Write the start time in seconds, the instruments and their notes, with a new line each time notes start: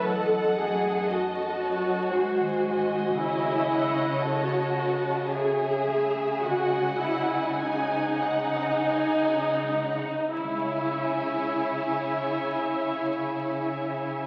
Already playing: violin section A5
0.03 cello section F#2, harp F#2, viola section A4, violin section D#5 F#5
0.32 harp F#3
0.57 harp A3, viola section G#4
0.84 harp D#4
1.08 viola section F#4, harp F#4, violin section D#5 A5
1.35 harp A4
1.61 harp F#4, violin section C#5
1.87 harp A4
2.13 harp G#2, cello section G#2, violin section C5 G#5
2.40 harp D#3
2.65 harp G#3, violin section D#5
2.92 harp C4
3.18 cello section C#3, harp C#3, viola section E4, violin section C#5 G#5
3.44 harp A3
3.71 violin section F#5
4.24 viola section F#4, harp A4, violin section A5
4.50 harp C#5
4.78 harp A4, violin section A5
5.06 harp C#5
5.32 viola section G#4, harp A4, violin section C#5 E5 G#5
5.60 harp F#4
5.87 harp A3, violin section E5
6.16 harp C#4
6.42 harp C#3, viola section F#4, violin section D#5 F#5
6.70 harp G#3
6.99 harp C4, viola section E4
7.28 harp F#4
7.57 viola section D#4, harp G#4, violin section F#5 G#5
7.90 harp C5
8.23 harp G#4, violin section F#5
8.55 harp C5
8.89 harp G#4, violin section F#5 G#5
9.26 harp F#4
9.63 harp G#3
10.02 harp C4
10.34 harp C#3, cello section C#3, viola section E4, violin section C#5 E5 G#5
10.43 harp G#3
10.50 harp C#4
10.57 harp G#4
10.65 harp C#5